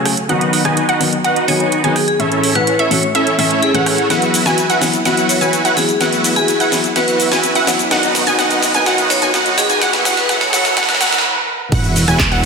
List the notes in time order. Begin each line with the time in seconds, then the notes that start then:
Already playing: C#3 F#3 A3 G#4
0.05 cross-stick, open hi-hat
0.17 closed hi-hat
0.29 D#3 F#3 B3 D#4 F#4 B4 D#5 F#5, closed hi-hat
0.41 closed hi-hat
0.53 open hi-hat
0.64 D#3 F#3 B3 D#4 F#4 B4 D#5 G#5, cross-stick, closed hi-hat
0.77 closed hi-hat
0.89 D#4 F#4 B4 D#5 F#5, closed hi-hat
1.00 D#3 F#3 B3 D#4, open hi-hat
1.13 closed hi-hat
1.24 D#4 F#4 B4 D#5 F#5, closed hi-hat
1.36 closed hi-hat
1.48 D#3 F#3 B3 D#4 F#4 B4 C#5 D#5 G#5, open hi-hat
1.60 closed hi-hat
1.72 closed hi-hat
1.83 D#3 F#3 B3 D#4 F#4 G#4 B4 D#5 G#5, closed hi-hat
1.96 G#4, cross-stick, open hi-hat
2.08 G#4, closed hi-hat
2.19 A2 E3 A3 C#4 E4 A4 C#5 E5, closed hi-hat
2.32 closed hi-hat
2.43 open hi-hat
2.55 A2 E3 A3 C#4 E4 A4 B4 C#5 F#5, cross-stick, closed hi-hat
2.67 closed hi-hat
2.79 C#4 E4 A4 C#5 E5, closed hi-hat
2.91 A2 E3 A3 C#4 F#4 C#5, open hi-hat
3.03 closed hi-hat
3.15 C#4 E4 A4 C#5 E5, closed hi-hat
3.27 closed hi-hat
3.38 A2 E3 A3 C#4 E4 A4 C#5 E5, open hi-hat
3.51 closed hi-hat
3.62 G#4, closed hi-hat
3.74 A2 E3 A3 C#4 E4 A4 B4 C#5 F#5, closed hi-hat
3.86 cross-stick, open hi-hat
3.98 closed hi-hat
4.10 E3 F#3 B3 E4 F#4 B4 E5 F#5, snare, closed hi-hat, riser, shaker
4.22 closed hi-hat, shaker
4.34 open hi-hat, shaker
4.45 E3 F#3 B3 E4 F#4 B4 E5 G#5, snare, closed hi-hat, shaker
4.58 closed hi-hat, shaker
4.70 E4 F#4 B4 E5 F#5, closed hi-hat, shaker
4.81 E3 F#3 B3 E4, snare, open hi-hat, shaker
4.93 closed hi-hat, shaker
5.05 E3 F#3 B3 E4 F#4 B4 E5 F#5, snare, closed hi-hat, shaker
5.17 closed hi-hat, shaker
5.29 C#5, open hi-hat, shaker
5.41 E3 F#3 B3 E4 F#4 B4 E5 G#5, closed hi-hat, shaker
5.53 closed hi-hat, shaker
5.65 E4 F#4 B4 E5 F#5, closed hi-hat, shaker
5.76 E3 F#3 B3 E4 G#4, snare, open hi-hat, shaker
5.89 G#4, closed hi-hat, shaker
6.00 E3 F#3 B3 E4 F#4 B4 E5 F#5, snare, closed hi-hat, shaker
6.13 closed hi-hat, shaker
6.24 open hi-hat, shaker
6.36 E3 F#3 B3 E4 F#4 G#4 B4 E5 G#5, closed hi-hat, shaker
6.48 closed hi-hat, shaker
6.60 E4 F#4 B4 E5 F#5, closed hi-hat, shaker
6.72 E3 F#3 B3 E4, snare, open hi-hat, shaker
6.84 closed hi-hat, shaker
6.95 E3 F#3 B3 E4 F#4 B4 E5 F#5, snare, closed hi-hat, shaker
7.08 B4, closed hi-hat, shaker
7.20 open hi-hat, shaker
7.31 E3 F#3 B3 E4 F#4 B4 E5 G#5, snare, closed hi-hat, shaker
7.43 closed hi-hat, shaker
7.55 E4 F#4 B4 E5 F#5, closed hi-hat, shaker
7.67 E3 F#3 B3 E4, snare, open hi-hat, shaker
7.79 closed hi-hat, shaker
7.91 D#3 F#3 B3 D#4 F#4 B4 D#5 F#5, snare, closed hi-hat, shaker
8.03 closed hi-hat, shaker
8.15 snare, open hi-hat, shaker
8.26 D#3 F#3 B3 D#4 F#4 B4 D#5 G#5, closed hi-hat, shaker
8.38 D#3 F#3 B3 D#4 F#4 B4 D#5 F#5, snare, closed hi-hat, shaker
8.51 closed hi-hat, shaker
8.62 snare, open hi-hat, shaker
8.74 D#3 F#3 B3 D#4 F#4 B4 D#5 G#5, closed hi-hat, shaker
8.86 D#3 F#3 B3 D#4 F#4 B4 D#5 F#5, snare, closed hi-hat, shaker
8.98 closed hi-hat, shaker
9.10 C#5, snare, open hi-hat, shaker
9.22 D#3 F#3 B3 D#4 F#4 B4 D#5 G#5, closed hi-hat, shaker
9.33 D#3 F#3 B3 D#4 F#4 B4 D#5 F#5, snare, closed hi-hat, shaker
9.46 closed hi-hat, shaker
9.58 G#4, snare, open hi-hat, shaker
9.69 D#3 F#3 B3 D#4 F#4 G#4 B4 D#5 G#5, closed hi-hat, shaker
9.81 E3 F#3 B3 E4 F#4 B4 E5 F#5, snare, closed hi-hat, shaker
9.93 snare, closed hi-hat, shaker
10.05 E3 F#3 B3 E4 F#4 B4 E5 F#5, snare, open hi-hat, shaker
10.17 B4, snare, closed hi-hat, shaker
10.29 E3 F#3 B3 E4 F#4 B4 E5 F#5, snare, closed hi-hat, shaker
10.41 C#5, snare, closed hi-hat, shaker
10.53 E3 F#3 B3 E4 F#4 B4 C#5 E5 F#5, snare, open hi-hat, shaker
10.65 snare, closed hi-hat, shaker
10.76 E3 F#3 B3 E4 F#4 B4 E5 F#5, snare, closed hi-hat, shaker
10.83 snare
10.89 snare, closed hi-hat, shaker
10.95 snare
11.00 E3 F#3 B3 E4 F#4 B4 E5 F#5, snare, open hi-hat, shaker
11.07 snare
11.12 snare, closed hi-hat, shaker
11.18 snare
11.72 E1 E4 F#4 B4 E5 F#5, kick, closed hi-hat, crash, sub drop, shaker
11.84 closed hi-hat, shaker
11.96 open hi-hat, ride, shaker
12.08 E1 E4 F#4 B4 E5 G#5, cross-stick, closed hi-hat, shaker
12.19 kick, clap, closed hi-hat, shaker
12.32 E1 E4 F#4 B4 E5 F#5, closed hi-hat